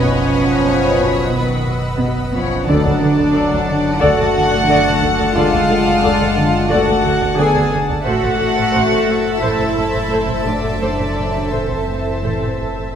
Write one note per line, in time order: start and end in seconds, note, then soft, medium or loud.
0.00 2.64 F#1 medium
0.00 2.64 B1 medium
0.00 0.20 B2 medium
0.00 1.31 F3 medium
0.00 1.32 C#4 medium
0.00 2.63 B4 medium
0.00 2.68 B4 medium
0.00 1.34 C#5 medium
0.00 2.64 D#5 medium
0.00 2.68 D#5 medium
0.00 2.64 F#5 medium
0.00 2.32 B5 soft
0.00 2.64 B5 medium
0.00 1.65 C#6 soft
0.00 1.41 D#6 soft
0.34 0.54 B2 medium
0.67 0.87 B3 medium
1.01 1.21 B2 medium
1.34 1.55 B2 medium
1.34 1.68 D#3 medium
1.34 1.67 B3 medium
1.34 1.67 B4 medium
1.41 2.31 E6 soft
1.67 1.87 B2 medium
2.00 2.21 B2 medium
2.33 2.65 F3 medium
2.33 2.54 B3 medium
2.33 2.65 C#4 medium
2.33 2.65 C#5 medium
2.66 8.01 F#1 medium
2.66 2.75 D2 medium
2.66 2.88 D3 medium
2.66 4.02 F#3 medium
2.66 4.01 D4 medium
2.66 2.83 A4 medium
2.66 8.06 D5 medium
2.66 2.83 D5 medium
2.66 4.02 D5 medium
2.66 8.02 F#5 medium
2.66 8.02 A5 medium
2.85 2.92 D2 medium
2.85 2.91 A4 medium
2.85 2.92 D5 soft
3.01 3.09 D2 medium
3.01 3.21 D3 medium
3.01 3.07 A4 medium
3.17 3.25 D2 medium
3.17 3.24 A4 medium
3.17 3.24 D5 soft
3.33 3.42 D2 medium
3.33 3.54 D4 medium
3.33 3.49 A4 medium
3.33 3.49 D5 medium
3.50 3.58 D2 medium
3.50 3.57 A4 medium
3.50 3.57 D5 medium
3.67 3.88 D3 medium
4.00 4.09 D2 medium
4.00 4.21 D3 medium
4.00 5.35 A3 medium
4.00 5.35 F#4 loud
4.00 4.16 A4 medium
4.00 4.16 D5 medium
4.00 5.36 F#5 medium
4.17 4.25 D2 medium
4.17 4.24 A4 medium
4.17 4.24 D5 medium
4.34 4.42 D2 medium
4.34 4.55 D3 medium
4.34 4.41 A4 medium
4.52 4.59 D2 medium
4.52 4.59 A4 medium
4.52 4.59 D5 medium
4.68 4.75 D2 medium
4.68 4.88 D3 medium
4.68 4.84 A4 medium
4.68 4.84 D5 medium
4.85 4.93 D2 medium
4.85 4.92 A4 medium
4.85 4.92 D5 medium
5.01 5.09 D2 medium
5.01 5.22 D4 medium
5.01 5.09 A4 medium
5.18 5.26 D2 medium
5.18 5.25 A4 medium
5.18 5.25 D5 medium
5.35 5.42 D2 medium
5.35 5.56 D3 medium
5.35 6.70 G#3 medium
5.35 6.68 F4 loud
5.35 5.51 A4 medium
5.35 5.51 D5 medium
5.35 6.70 F5 medium
5.53 5.60 D2 medium
5.53 5.60 A4 medium
5.53 5.60 D5 soft
5.68 5.76 D2 medium
5.68 5.89 D3 medium
5.68 5.76 A4 medium
5.86 5.93 D2 medium
5.86 5.93 A4 medium
5.86 5.93 D5 soft
6.02 6.10 D2 medium
6.02 6.23 D4 medium
6.02 6.18 A4 medium
6.02 6.19 D5 medium
6.19 6.27 D2 medium
6.19 6.26 A4 medium
6.19 6.26 D5 medium
6.37 6.57 D3 medium
6.70 6.77 D2 medium
6.70 6.91 D3 medium
6.70 7.36 A3 medium
6.70 7.38 F#4 medium
6.70 6.85 A4 medium
6.70 6.85 D5 medium
6.70 7.37 F#5 medium
6.87 6.95 D2 medium
6.87 6.94 A4 medium
6.87 6.94 D5 soft
7.04 7.12 D2 medium
7.04 7.24 D3 medium
7.04 7.11 A4 medium
7.19 7.28 D2 medium
7.19 7.27 A4 soft
7.19 7.27 D5 medium
7.37 7.45 D2 medium
7.37 7.58 D3 medium
7.37 7.71 B3 medium
7.37 7.72 G#4 medium
7.37 7.52 A4 medium
7.37 7.53 D5 medium
7.37 7.72 G#5 medium
7.53 7.62 D2 medium
7.53 7.60 A4 medium
7.53 7.61 D5 soft
7.71 7.79 D2 soft
7.71 7.92 D4 medium
7.71 7.78 A4 medium
7.88 7.96 D2 medium
7.88 7.95 A4 medium
7.88 7.95 D5 medium
8.05 12.95 F#1 medium
8.05 8.13 A1 medium
8.05 8.26 A2 medium
8.05 9.38 A3 medium
8.05 9.37 F#4 medium
8.05 8.21 A4 medium
8.05 12.95 A4 medium
8.05 8.21 C5 medium
8.05 12.95 C5 medium
8.05 12.95 E5 medium
8.05 9.37 F#5 medium
8.05 12.95 A5 medium
8.22 8.30 A1 medium
8.22 8.29 A4 soft
8.22 8.29 C5 soft
8.39 8.47 A1 medium
8.39 8.60 A2 soft
8.39 8.46 A4 medium
8.56 8.64 A1 soft
8.56 8.63 A4 soft
8.56 8.63 C5 soft
8.72 8.80 A1 medium
8.72 8.93 A3 medium
8.72 8.89 A4 medium
8.72 8.89 C5 medium
8.90 8.98 A1 soft
8.90 8.98 A4 soft
8.90 8.97 C5 soft
9.07 9.27 A2 medium
9.41 9.49 A1 medium
9.41 9.62 A2 soft
9.41 10.44 A3 medium
9.41 10.46 E4 medium
9.41 9.58 A4 medium
9.41 9.58 C5 medium
9.41 10.45 E5 medium
9.59 9.66 A1 soft
9.59 9.66 A4 soft
9.59 9.66 C5 soft
9.76 9.83 A1 soft
9.76 9.97 A2 soft
9.76 9.83 A4 soft
9.93 10.00 A1 soft
9.93 10.00 A4 soft
9.93 10.00 C5 soft
10.10 10.17 A1 medium
10.10 10.31 A2 medium
10.10 10.27 A4 medium
10.10 10.27 C5 soft
10.27 10.35 A1 soft
10.27 10.35 A4 soft
10.27 10.35 C5 soft
10.45 10.52 A1 soft
10.45 10.78 F#3 soft
10.45 10.67 A3 soft
10.45 10.78 D4 medium
10.45 10.53 A4 soft
10.45 10.79 D5 medium
10.63 10.70 A1 soft
10.63 10.70 A4 soft
10.63 10.70 C5 soft
10.79 10.88 A1 medium
10.79 11.02 A2 medium
10.79 11.50 F#3 medium
10.79 11.50 D4 medium
10.79 10.97 A4 soft
10.79 10.98 C5 medium
10.79 11.50 D5 medium
10.98 11.05 A1 soft
10.98 11.06 A4 soft
10.98 11.06 C5 soft
11.16 11.24 A1 soft
11.16 11.38 A2 soft
11.16 11.24 A4 soft
11.34 11.41 A1 soft
11.34 11.41 A4 soft
11.34 11.41 C5 soft
11.51 11.59 A1 medium
11.51 12.94 E3 soft
11.51 11.73 A3 soft
11.51 12.94 C4 soft
11.51 11.68 A4 medium
11.51 12.94 C5 soft
11.51 11.68 C5 soft
11.69 11.77 A1 soft
11.69 11.77 A4 soft
11.69 11.76 C5 soft
11.87 12.09 A2 soft
12.23 12.30 A1 soft
12.23 12.44 A2 soft
12.23 12.40 A4 medium
12.23 12.40 C5 soft
12.41 12.48 A1 soft
12.41 12.48 A4 soft
12.41 12.48 C5 soft
12.58 12.66 A1 soft
12.58 12.80 A2 soft
12.58 12.66 A4 soft
12.76 12.84 A1 soft
12.76 12.83 A4 soft
12.76 12.84 C5 soft